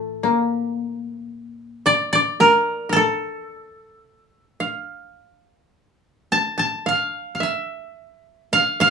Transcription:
Already playing: A2 E3 A3 A4
0.23 A#3
1.86 D5
2.13 D5
2.40 A#4
2.89 A4 A#4
2.96 A4
4.60 F5
6.32 A5
6.58 A5
6.86 F5
7.35 F5
7.40 E5
8.53 F5
8.80 F5

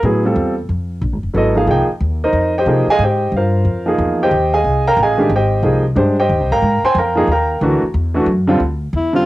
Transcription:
0.03 A2 F#3 B3 E4 G#4
0.25 G3 C4 F4 A4
0.36 E2
0.69 F2
1.02 A#1
1.12 G#1
1.23 F1
1.34 G#1 F#3 B3 E4 A4 D#5
1.55 F3 A#3 D#4 G#4 F5
1.67 C2 F3 A#3 D#4 G#4 G5
1.89 muted upright bass stroke
2.01 D#2
2.24 D#4 A#4 C5 D#5
2.33 F2
2.58 G4 C5 D#5 G5
2.66 C3 F3 A#3 D#4 G#4
2.87 G#4 D#5 F5 G#5, muted upright bass stroke
2.99 G#2
3.04 G4 C5 D#5 G5
3.32 G2
3.37 F4 A#4 C5 F5
3.65 F2
3.86 F3 A#3 D#4 G#4
3.98 E2
4.23 G4 C5 D#5 G5
4.31 D#2
4.54 G#4 D#5 F5 G#5
4.64 C2
4.87 A#4 F5 G5 A#5
4.97 A1
5.03 G#4 D#5 F5 G#5
5.17 D#3 G#3 D4 G4
5.29 G#1
5.35 G4 C5 D#5 G5
5.63 C2 F3 A#3 D#4 G#4
5.95 G2 G#3 D4 G4 C5
6.20 G4 C5 D#5 G5
6.29 D#2
6.40 C2
6.51 G#1 A#4 F5 G5 A#5
6.62 G#2
6.83 C5 G5 G#5 C6, muted upright bass stroke
6.95 F2 A#5
6.99 A#4 F5 G5
7.15 F3 A#3 D#4 G#4
7.27 D#2
7.32 A#4 F5 G5 A#5
7.61 D2 E3 A3 D4 F#4
7.82 muted upright bass stroke
7.94 E2
8.14 E3 A3 D4 F#4
8.26 F#2
8.47 D3 G3 C4 F4
8.60 D2
8.93 E2 E4
9.13 D3 G3 C4 F4

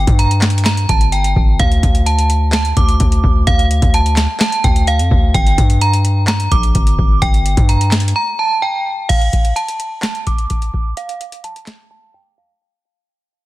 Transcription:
Already playing: G5
0.07 G2, kick, closed hi-hat
0.19 A#5, closed hi-hat
0.31 closed hi-hat
0.42 snare, clap, closed hi-hat, open hi-hat
0.50 closed hi-hat
0.58 closed hi-hat
0.65 A#5, snare, clap, closed hi-hat
0.77 closed hi-hat
0.89 G1 A5, kick, closed hi-hat
1.01 closed hi-hat
1.12 G5, closed hi-hat
1.24 closed hi-hat
1.36 G1, kick
1.59 D2 F5, kick, closed hi-hat
1.72 closed hi-hat
1.83 D2, kick, closed hi-hat
1.95 closed hi-hat
2.06 A5, closed hi-hat
2.19 closed hi-hat
2.30 closed hi-hat
2.53 A5, snare, clap, closed hi-hat
2.65 closed hi-hat
2.77 D2 D6, kick, closed hi-hat
2.89 closed hi-hat
3.00 D2, kick, closed hi-hat
3.12 closed hi-hat
3.24 D2, kick
3.47 D2 F5, kick, closed hi-hat
3.59 closed hi-hat
3.71 closed hi-hat
3.82 D2, kick, closed hi-hat
3.94 A5, closed hi-hat
4.06 closed hi-hat
4.17 snare, clap, closed hi-hat
4.40 A5, snare, clap, closed hi-hat
4.52 closed hi-hat
4.64 D2 G5, kick, closed hi-hat
4.76 closed hi-hat
4.87 F5, closed hi-hat
4.99 F2, closed hi-hat
5.11 D2, kick
5.34 G1 G5, kick, closed hi-hat
5.47 closed hi-hat
5.58 G2, kick, closed hi-hat
5.70 closed hi-hat
5.81 A#5, closed hi-hat
5.93 closed hi-hat
6.05 closed hi-hat
6.28 A#5, snare, clap, closed hi-hat
6.40 closed hi-hat
6.52 A#1 D6, kick, closed hi-hat
6.63 closed hi-hat
6.75 G1, kick, closed hi-hat
6.87 closed hi-hat
6.99 G1, kick
7.22 G1 G5, kick, closed hi-hat
7.34 closed hi-hat
7.46 closed hi-hat
7.57 G2, kick, closed hi-hat
7.69 A#5, closed hi-hat
7.81 closed hi-hat
7.92 snare, clap, closed hi-hat, open hi-hat
8.00 closed hi-hat
8.08 closed hi-hat
8.16 A#5
8.39 A5
8.62 G5
9.09 F5, kick, closed hi-hat, crash
9.22 closed hi-hat
9.33 kick, closed hi-hat
9.45 closed hi-hat
9.56 A5, closed hi-hat
9.68 closed hi-hat
9.80 closed hi-hat
10.03 A5, snare, clap, closed hi-hat
10.15 closed hi-hat
10.27 D6, kick, closed hi-hat
10.38 closed hi-hat
10.50 kick, closed hi-hat
10.62 closed hi-hat
10.74 kick
10.97 F5, closed hi-hat
11.09 closed hi-hat
11.21 closed hi-hat
11.32 closed hi-hat
11.44 A5, closed hi-hat
11.56 closed hi-hat
11.67 snare, clap, closed hi-hat
11.91 A5
12.14 G5
12.38 F5

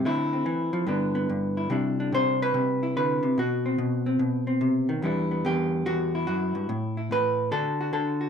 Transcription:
0.05 D3 A3 C4 E4
0.33 C4
0.46 E3
0.73 F3
0.87 G2 D3 B3 D4
1.15 B3
1.29 G2
1.57 E4
1.70 C3 G3 D4 E4
2.00 D4
2.12 C3 C5
2.42 B4
2.54 C3
2.83 E4
2.97 D3 B4
3.23 C3
3.38 B2 F#4
3.66 C4
3.78 B2
4.06 C4
4.19 B2
4.47 C4
4.61 C3
4.89 D#3
5.02 E2 G3 B3 D4 E4
5.31 B3
5.45 E2 G4
5.86 E2 F#4
6.15 E4
6.27 F#2 F#4
6.55 G2
6.69 A2
6.97 E4
7.11 A2 B4
7.51 D3 D4 F#4 A4
7.81 F#4
7.93 D3 A4
8.21 F#4

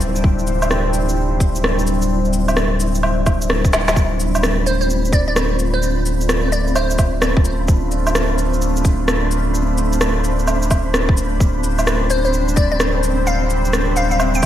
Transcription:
Already playing: D1 G3 C4 D4 E4 C5 E5
0.01 cabasa
0.16 shaker
0.24 kick
0.39 shaker
0.47 cabasa
0.62 low woodblock, shaker
0.71 cross-stick, shaker
0.94 cabasa
1.09 shaker
1.40 kick, cabasa
1.56 shaker
1.64 cross-stick
1.79 shaker
1.87 cabasa
2.02 shaker
2.25 shaker
2.33 cabasa
2.48 low woodblock, shaker
2.57 cross-stick, shaker
2.80 cabasa
2.95 shaker
3.03 low woodblock
3.26 kick, cabasa, low woodblock
3.42 shaker
3.50 cross-stick
3.65 kick, shaker
3.73 snare, cabasa
3.88 snare, shaker
3.95 D1 A3 C4 D4 F4 C5 B5, kick, shaker
4.20 cabasa
4.35 low woodblock, shaker
4.43 cross-stick, shaker
4.66 C5, cabasa, shaker
4.81 C5, shaker
4.90 shaker
5.05 shaker
5.13 D5, kick, cabasa
5.28 D5
5.36 cross-stick, shaker
5.59 cabasa
5.74 C5
5.83 shaker
6.06 cabasa
6.21 shaker
6.29 cross-stick, shaker
6.52 D5, cabasa, shaker
6.67 shaker
6.75 C5, low woodblock, shaker
6.90 shaker
6.99 kick, cabasa, low woodblock
7.22 cross-stick, shaker
7.37 kick
7.45 cabasa
7.68 kick, shaker
7.92 cabasa
8.07 low woodblock, shaker
8.15 cross-stick, shaker
8.38 cabasa, shaker
8.54 shaker
8.62 shaker
8.77 shaker
8.85 kick, cabasa
9.08 cross-stick, shaker
9.31 cabasa
9.55 shaker
9.78 cabasa
9.93 shaker
10.01 cross-stick, shaker
10.24 cabasa, shaker
10.39 shaker
10.47 low woodblock, shaker
10.62 shaker
10.71 kick, cabasa, low woodblock
10.94 cross-stick, shaker
11.09 kick
11.17 cabasa
11.40 D1 G3 C4, kick, shaker
11.64 cabasa
11.79 low woodblock, shaker
11.87 cross-stick, shaker
12.10 C5, cabasa, shaker
12.25 C5, shaker
12.33 shaker
12.48 shaker
12.56 D5, kick, cabasa
12.72 D5
12.80 cross-stick, shaker
13.03 cabasa
13.27 F5, shaker
13.50 cabasa
13.65 shaker
13.73 cross-stick, shaker
13.96 F5, cabasa, shaker
14.11 F5, shaker
14.20 low woodblock, shaker
14.34 G5, shaker
14.43 kick, cabasa, low woodblock

